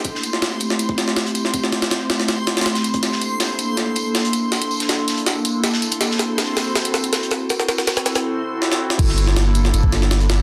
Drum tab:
CC |--------------------------------|--------------------------------|--------------------------------|--------------------------------|
HH |x---x---x---x---x---x---x-x-x---|x---x-x-x---x-x-x---x-xxx-x-x-x-|x---x---x---x---x---x---x-x-x---|x-x---x-x---x-x-x---x---x---x-x-|
TB |x---x---x---x---x---x---x---x---|x---x---x---x---x---x---x---x---|x---x---x---x---x---x---x---x---|x---x---x---x---x---x---x---x---|
SD |--o---o-o-----o-----o-o-o-----o-|--o-o-o-o---o-o-o---o-ooo-o-----|o-o-----o-------o-------o-------|o-----o-o---o---o-------o-o-----|
BD |o-----------------o-------------|o-----------------------------o-|--------------------------------|--------------------------------|

CC |--------------------------------|--------------------------------|x-------------------------------|
HH |x---x---x---x---x-x---x-x-x-x---|x---x---x---x-x-----------------|x---x---x---x---x---x---x-x-x---|
TB |x---x---x---x---x---x---x---x---|x---x---x---x-------------------|x---x---x---x---x---x---x---x---|
SD |o-o-o---o---o---o---o---o---o---|o-o-o-o-o-o-o-o---------o-o---o-|--o---o-o-----o-----o-o-o---o---|
BD |--------------------------------|--------------------------------|o-----------------o-------------|